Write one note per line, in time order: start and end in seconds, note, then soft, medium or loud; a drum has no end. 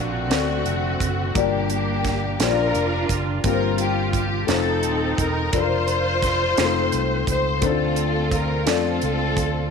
0.00 0.31 A#1 medium
0.00 0.26 A#2 medium
0.00 1.32 A3 medium
0.00 0.23 A#3 medium
0.00 1.32 C4 medium
0.00 0.23 D4 medium
0.00 0.28 D4 medium
0.00 0.24 F4 medium
0.00 0.28 F4 medium
0.00 1.36 F#4 medium
0.00 0.24 A4 medium
0.00 0.24 D5 medium
0.30 0.63 D2 medium
0.30 1.32 D3 medium
0.30 1.28 C4 medium
0.30 1.28 D4 medium
0.30 1.29 F#4 medium
0.30 1.29 A4 medium
0.30 1.29 D5 medium
0.30 snare medium
0.30 closed hi-hat medium
0.66 0.98 F1 medium
0.66 closed hi-hat soft
1.00 1.33 F#1 medium
1.00 kick medium
1.00 closed hi-hat medium
1.34 2.36 G1 medium
1.34 2.36 G2 medium
1.34 2.33 A#3 medium
1.34 2.37 A#3 medium
1.34 2.33 D4 medium
1.34 2.37 D4 medium
1.34 2.33 F4 medium
1.34 2.33 G4 medium
1.34 2.40 G4 medium
1.34 2.34 D5 medium
1.34 kick loud
1.34 closed hi-hat medium
1.70 closed hi-hat soft
2.05 kick medium
2.05 snare soft
2.05 closed hi-hat medium
2.40 2.72 A#1 medium
2.40 3.38 A#3 medium
2.40 3.38 D4 medium
2.40 3.41 D4 medium
2.40 3.38 F4 medium
2.40 3.41 F4 medium
2.40 3.38 G4 medium
2.40 3.19 A#4 medium
2.40 2.47 C5 medium
2.40 snare medium
2.40 closed hi-hat medium
2.49 3.42 D5 medium
2.74 3.07 F1 medium
2.74 closed hi-hat soft
3.09 3.41 F#1 medium
3.09 kick medium
3.09 closed hi-hat medium
3.44 4.45 G1 medium
3.44 4.45 G2 medium
3.44 4.42 A#3 medium
3.44 4.42 C4 medium
3.44 4.45 F4 medium
3.44 4.43 F4 medium
3.44 4.43 G4 medium
3.44 3.77 A#4 medium
3.44 3.52 A#4 medium
3.44 kick loud
3.44 closed hi-hat medium
3.53 4.46 C5 medium
3.78 4.12 G4 medium
3.78 closed hi-hat soft
4.13 4.47 G4 medium
4.13 kick medium
4.13 closed hi-hat medium
4.47 4.83 F1 medium
4.47 5.46 A3 medium
4.47 5.46 C4 medium
4.47 5.50 C4 medium
4.47 5.47 D#4 medium
4.47 5.50 D#4 medium
4.47 5.47 F4 medium
4.47 5.19 A4 medium
4.47 5.47 C5 medium
4.47 snare medium
4.47 closed hi-hat medium
4.83 5.16 D#1 medium
4.83 closed hi-hat soft
5.18 5.50 E1 medium
5.18 5.54 A#4 medium
5.18 kick medium
5.18 closed hi-hat medium
5.52 6.54 F1 medium
5.52 6.51 D4 medium
5.52 6.52 F4 medium
5.52 7.25 F4 medium
5.52 5.61 A4 medium
5.52 7.29 C5 loud
5.52 kick loud
5.52 closed hi-hat medium
5.61 6.55 A#4 medium
5.88 closed hi-hat soft
6.22 kick medium
6.22 snare soft
6.22 closed hi-hat medium
6.58 6.90 F1 medium
6.58 6.64 G#3 medium
6.58 7.56 C4 medium
6.58 7.57 D#4 medium
6.58 7.57 F4 medium
6.58 7.57 C5 medium
6.58 snare medium
6.58 closed hi-hat medium
6.64 7.59 A3 medium
6.92 7.25 C2 medium
6.92 closed hi-hat soft
7.27 7.60 C#2 medium
7.27 7.62 C5 medium
7.27 kick medium
7.27 closed hi-hat medium
7.61 8.68 D2 medium
7.61 8.64 D3 medium
7.61 8.60 A3 medium
7.61 8.61 C4 medium
7.61 8.64 C4 medium
7.61 8.61 D4 medium
7.61 7.70 D#4 soft
7.61 8.64 F4 medium
7.61 8.33 A4 medium
7.61 8.62 C5 medium
7.61 kick loud
7.61 closed hi-hat medium
7.70 8.65 F4 medium
7.96 closed hi-hat soft
8.31 8.68 A#4 medium
8.31 kick medium
8.31 closed hi-hat medium
8.66 9.00 F2 medium
8.66 9.65 A3 medium
8.66 9.65 C4 medium
8.66 9.69 C4 medium
8.66 9.65 D4 medium
8.66 9.65 F4 medium
8.66 9.69 F4 medium
8.66 9.69 A4 medium
8.66 9.66 D5 medium
8.66 snare medium
8.66 closed hi-hat medium
9.02 9.35 C#2 medium
9.02 closed hi-hat soft
9.37 9.69 D2 medium
9.37 kick medium
9.37 closed hi-hat medium